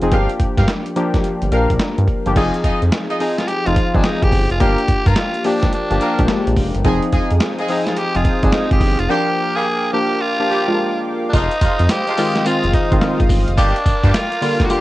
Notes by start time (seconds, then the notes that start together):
Already playing: F3 C4 D#4 F4 G#4
0.01 F1 F3 C4 D#4 G#4, closed hi-hat
0.11 G1 F3 A#3 D4 F4 G4 A#4 F5, kick, closed hi-hat
0.29 closed hi-hat
0.40 G2, kick, closed hi-hat
0.58 G2 F4 G4 A#4 F5, kick, snare, closed hi-hat
0.68 snare, closed hi-hat
0.86 closed hi-hat
0.96 F3 A#3 D4 G4, closed hi-hat
1.14 kick, snare, closed hi-hat
1.24 closed hi-hat
1.42 G1, closed hi-hat
1.52 A#1 F3 A#3 D4 F4 G4 A#4 F5, closed hi-hat
1.70 A#1, kick, closed hi-hat
1.80 snare, closed hi-hat
1.98 G2, closed hi-hat
2.08 kick, closed hi-hat
2.26 G1 F3 A#3 D4 G4, closed hi-hat
2.36 F1 F3 C4 D#4 F4 G#4 D#5, kick, closed hi-hat, crash
2.54 closed hi-hat
2.64 F2 D#4 F4 G#4 D#5, kick, closed hi-hat
2.82 F2, closed hi-hat
2.92 snare, closed hi-hat
3.10 D#4 F4 G#4 D#5, closed hi-hat
3.20 F3 C4 D#4 G#4, open hi-hat
3.38 F4, snare, closed hi-hat
3.48 G4, closed hi-hat
3.66 F1 F3 C4 D#4 F4, closed hi-hat
3.76 kick, closed hi-hat
3.94 G#1 F3 C4 D4 D#4 G#4, kick, closed hi-hat
4.04 D#4, snare, closed hi-hat
4.23 G#1 G4, kick, closed hi-hat
4.32 G1, kick, open hi-hat
4.50 F1 F4, closed hi-hat
4.60 G1 F3 A#3 D4 F4 G4 A#4, kick, closed hi-hat
4.78 closed hi-hat
4.88 G2, kick, closed hi-hat
5.06 G2 A#3 F4 G4 A#4, kick, closed hi-hat
5.16 snare, closed hi-hat
5.34 closed hi-hat
5.44 F3 A#3 D4 G4, open hi-hat
5.62 kick, snare, closed hi-hat
5.73 D4, closed hi-hat
5.91 G1 F3 A#3 D4 G4, closed hi-hat
6.01 A#3 F4 G4 A#4, closed hi-hat
6.19 A#1 F3 G#3 D4 G4, kick, closed hi-hat
6.25 A#3, snare, closed hi-hat
6.47 A#1, closed hi-hat
6.56 F1, kick, open hi-hat
6.75 G1, closed hi-hat
6.85 F1 F3 G#3 C4 D#4 F4 G#4 C5 F5 G#5 D#6, kick, closed hi-hat
7.03 closed hi-hat
7.12 F2 G#3 D#4 F4 G#4, kick, closed hi-hat
7.30 F2, closed hi-hat
7.40 snare, closed hi-hat
7.58 G#3 D#4 F4 G#4, closed hi-hat
7.68 F3 C4 D#4 G#4, open hi-hat
7.84 E4, snare, closed hi-hat
7.88 F4
7.96 G4, closed hi-hat
8.15 F1 F3 C4 D#4 F4 G#4, closed hi-hat
8.25 kick, closed hi-hat
8.43 G#1 F3 C4 D4 D#4 G#4, kick, closed hi-hat
8.52 D#4, snare, closed hi-hat
8.71 G#1 G4, kick, closed hi-hat
8.81 G1, kick, open hi-hat
8.99 F1 F4, closed hi-hat
9.09 F3 G3 A#3 D4 F4 G4 A#4 G5 D6
9.55 G3 A#3 F4 G4 G#4
9.93 F3 A#3 D4 G4
10.21 F4
10.39 F3 A#3 D4 G4
10.49 G3 A#3 F4 G4
10.67 F3 G#3 D4 F4
10.74 A#3
11.29 G#3 D4 D#4 C5 D#5 F5 D#6, kick, closed hi-hat, tambourine
11.33 F1 F3 D#4 F4
11.51 closed hi-hat
11.61 F2 F3 G#3 D#4 F4, kick, closed hi-hat, tambourine
11.79 F2, closed hi-hat
11.89 G4, snare, closed hi-hat, tambourine
12.07 F3 G#3 D#4 F4, closed hi-hat
12.17 D#3 G#3 C4 F4, open hi-hat, tambourine
12.35 snare, closed hi-hat
12.45 D#3 G#3 C4 F4, closed hi-hat, tambourine
12.64 F1, closed hi-hat
12.73 D#4, kick, closed hi-hat
12.91 G#1 D#3 G#3 C4 F4, kick, closed hi-hat
13.01 D#3 G#3 C4 F4, snare, closed hi-hat, tambourine
13.20 G#1, kick, closed hi-hat
13.29 G1, kick, open hi-hat, tambourine
13.48 F1, closed hi-hat
13.57 G1 G3 A#3 D4 F4 G4 A#4 G5 D6, kick, closed hi-hat, tambourine
13.76 closed hi-hat
13.86 G2, kick, closed hi-hat, tambourine
14.03 G2 G3 A#3 F4 G4, kick, closed hi-hat
14.14 F4, snare, closed hi-hat, tambourine
14.32 closed hi-hat
14.42 D3 G3 A#3 F4, open hi-hat, tambourine
14.60 kick, snare, closed hi-hat
14.65 F#4
14.70 D3 G3 A#3 F4 G4, closed hi-hat, tambourine